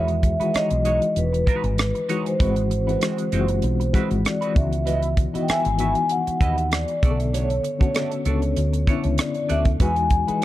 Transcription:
Already playing: E2 D#3 E3 G#3 F#4 E5
0.08 muted clean electric guitar stroke, closed hi-hat
0.23 muted clean electric guitar stroke, kick, closed hi-hat
0.40 E3 G#3 D#4 F#4 B4, muted fretless electric bass stroke, closed hi-hat
0.54 G#3 D#4 F#4 C#5 D#5, muted fretless electric bass stroke, cross-stick, closed hi-hat
0.70 B1, muted clean electric guitar stroke, closed hi-hat
0.84 E3 G#3 D#4 F#4 C#5, closed hi-hat
1.02 muted clean electric guitar stroke, closed hi-hat
1.16 E1 B4, muted clean electric guitar stroke, closed hi-hat
1.33 muted clean electric guitar stroke, closed hi-hat
1.47 G#3 D#4 F#4 B4, kick, closed hi-hat
1.63 G#1, muted clean electric guitar stroke, closed hi-hat
1.78 muted clean electric guitar stroke, cross-stick, closed hi-hat
1.95 muted clean electric guitar stroke, closed hi-hat
2.09 E3 G#3 D#4 F#4 C#5, closed hi-hat
2.25 C5, muted clean electric guitar stroke, closed hi-hat
2.39 G#1 E3 G#3 C4 F#4 B4, kick, closed hi-hat
2.56 muted clean electric guitar stroke, closed hi-hat
2.70 muted clean electric guitar stroke, closed hi-hat
2.87 E3 G#3 C4 F#4 B4, closed hi-hat
3.01 G#3 C4 F#4 C5, cross-stick, closed hi-hat
3.18 muted clean electric guitar stroke, closed hi-hat
3.32 F#1 E3 G#3 C4 F4 F#4 C5, closed hi-hat
3.41 F#4
3.48 muted clean electric guitar stroke, closed hi-hat
3.62 B1, muted clean electric guitar stroke, closed hi-hat
3.80 muted clean electric guitar stroke, closed hi-hat
3.93 E3 G#3 C4 F#4 B4, kick, cross-stick, closed hi-hat
4.10 G#1, muted clean electric guitar stroke, closed hi-hat
4.25 D5, muted clean electric guitar stroke, cross-stick, closed hi-hat
4.41 G#3 C4 F#4 B4, closed hi-hat
4.54 C#2 D#3 E3 B3 F#4 E5, muted clean electric guitar stroke, kick, closed hi-hat
4.72 muted clean electric guitar stroke, closed hi-hat
4.86 E4 F#4 B4 D#5, closed hi-hat
5.03 muted clean electric guitar stroke, closed hi-hat
5.17 muted clean electric guitar stroke, kick, closed hi-hat
5.33 E3 B3 D#4 E4 F#4 B4 D#5, muted fretless electric bass stroke, closed hi-hat
5.43 G5
5.48 E4 F#4 B4 E5 G#5, muted fretless electric bass stroke, cross-stick, closed hi-hat
5.65 G#1, muted clean electric guitar stroke, closed hi-hat
5.78 E3 B3 D#4 E4 F#4 B4 E5, closed hi-hat
5.95 muted clean electric guitar stroke, closed hi-hat
6.09 F#5, muted clean electric guitar stroke, closed hi-hat
6.27 muted clean electric guitar stroke, muted fretless electric bass stroke, closed hi-hat
6.41 D#2 E4 F#4 B4 D#5, kick, closed hi-hat
6.57 muted clean electric guitar stroke, closed hi-hat
6.72 D5, muted clean electric guitar stroke, cross-stick, closed hi-hat
6.88 muted clean electric guitar stroke, closed hi-hat
7.02 B1 C#3 D3 A3 B3 D4 F#4 G#4 D5, kick, closed hi-hat
7.11 A4
7.20 muted clean electric guitar stroke, closed hi-hat
7.33 A3 D4 F#4 C#5, closed hi-hat
7.50 muted clean electric guitar stroke, closed hi-hat
7.64 muted clean electric guitar stroke, closed hi-hat
7.79 D3 A3 B3 C#4 D4 F#4 C#5, kick, closed hi-hat
7.94 A3 D4 F#4 D5, cross-stick, closed hi-hat
8.12 muted clean electric guitar stroke, closed hi-hat
8.25 C#2 A3 B3 C#4 D4 F#4 A4 D5, closed hi-hat
8.42 muted clean electric guitar stroke, closed hi-hat
8.56 D2, muted clean electric guitar stroke, closed hi-hat
8.73 muted clean electric guitar stroke, closed hi-hat
8.87 D3 A3 B3 C#4 D4 E4 F#4 C#5, kick, closed hi-hat
9.04 C#2, muted clean electric guitar stroke, closed hi-hat
9.18 D5, muted clean electric guitar stroke, cross-stick, closed hi-hat
9.34 muted clean electric guitar stroke, closed hi-hat
9.49 D2 D3 A3 B3 C#4 D4 F#4 A4 D5 E5, closed hi-hat
9.65 muted clean electric guitar stroke, kick, closed hi-hat
9.79 E2 E3 G#3 D#4 F#4 B4 G#5, kick, closed hi-hat
9.96 muted clean electric guitar stroke, closed hi-hat
10.10 muted clean electric guitar stroke, kick, closed hi-hat
10.27 E3 G#3 D#4 F#4 G#4 B4, muted fretless electric bass stroke, closed hi-hat
10.41 G#3

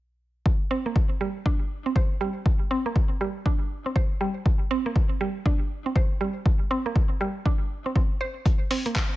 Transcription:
0.46 kick
0.71 C4
0.86 A#3
0.96 kick
1.21 G3
1.46 D4, kick
1.86 C4
1.96 C5, kick
2.21 G3
2.46 kick
2.71 C4
2.86 A#3
2.96 kick
3.21 G3
3.46 D4, kick
3.86 C4
3.96 C5, kick
4.21 G3
4.46 kick
4.71 C4
4.86 A#3
4.96 kick
5.21 G3
5.46 D4, kick
5.86 C4
5.96 C5, kick
6.21 G3
6.46 kick
6.71 C4
6.86 A#3
6.96 kick
7.21 G3
7.46 D4, kick
7.86 C4
7.96 C4, kick
8.21 C5
8.46 kick, closed hi-hat
8.71 C4, open hi-hat
8.86 A#3, closed hi-hat
8.96 kick, clap, closed hi-hat

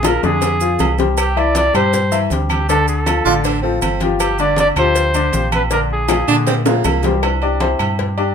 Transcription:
Already playing: A#1
0.03 F3 F4 G#4 A#4, cowbell, high bongo, high conga, low agogo, maracas
0.23 F2 D3 D4 G#4 D5, low bongo, high conga, maracas
0.42 cowbell, low bongo, high conga, low agogo, maracas
0.60 F3 F4 G#4, high conga, maracas
0.79 C2, cowbell, low bongo, high conga, low timbale, low agogo, maracas
0.98 G3 G4 C5, cowbell, low bongo, high conga, maracas
1.17 G4, cowbell, high conga, low agogo, claves, maracas
1.36 E3 E4 D5 E5, high conga, low agogo
1.55 D5, cowbell, high conga, low agogo, maracas
1.74 G2 G3 G4 C5, cowbell, high conga, low conga, low agogo, claves, maracas
1.93 cowbell, high conga, low conga, maracas
2.12 E3 E4 E5, high conga, low agogo, maracas
2.30 D2 G3 G4 C5, cowbell, high conga, maracas
2.49 G4, cowbell, high conga, low agogo, claves, maracas
2.69 D3 D4 A4 D5, cowbell, high conga, low agogo, maracas
2.88 A4, high conga, maracas
3.06 F3 F4 A4, cowbell, high conga, low agogo, claves, maracas
3.25 A1 D3 D4 F4 D5, high conga, maracas
3.44 D4, cowbell, high conga, low agogo, maracas
3.62 F3 C4 F4 A4, high conga
3.82 G1 C4, cowbell, high conga, low agogo, claves, maracas
4.00 F3 F4 G4, cowbell, high conga, maracas
4.20 G4, cowbell, high conga, low agogo, claves, maracas
4.38 D3 D4 D5, high conga, low agogo, maracas
4.56 D5, cowbell, high conga, low agogo, maracas
4.76 D2 F3 F4 G4 C5, cowbell, high conga, low conga, low agogo, claves, maracas
4.94 cowbell, high conga, maracas
5.14 D3 D4 D5, high conga, low agogo, maracas
5.33 A#1 F3 F4 G4, cowbell, high conga, maracas
5.52 B4, cowbell, high conga, low agogo, claves, maracas
5.71 D3 D4 A#4 D5, cowbell, high conga, low agogo, maracas
5.90 G#4, high conga
6.08 F3 F4 G#4, cowbell, high bongo, high conga, low agogo, claves, maracas
6.28 A#2 D3 D4 D5, maracas
6.47 C4, cowbell, low bongo, high conga, high timbale, low agogo, maracas
6.66 F3 A#3 F4 G#4, low bongo, high conga, high timbale, maracas
6.84 C2, cowbell, low bongo, high conga, low agogo, claves, maracas
7.03 G3 G4 C5, cowbell, low bongo, high conga, low timbale, maracas
7.22 E3 C4 D4, cowbell, high conga, low agogo, claves
7.42 D4 G4 D5, high conga, low agogo
7.60 C4 E4 G4 C5, cowbell, high conga, low agogo
7.79 G2, cowbell, high conga, low conga, low agogo, claves
7.99 cowbell, high conga, low conga
8.18 D4 G4 D5, high conga, low agogo

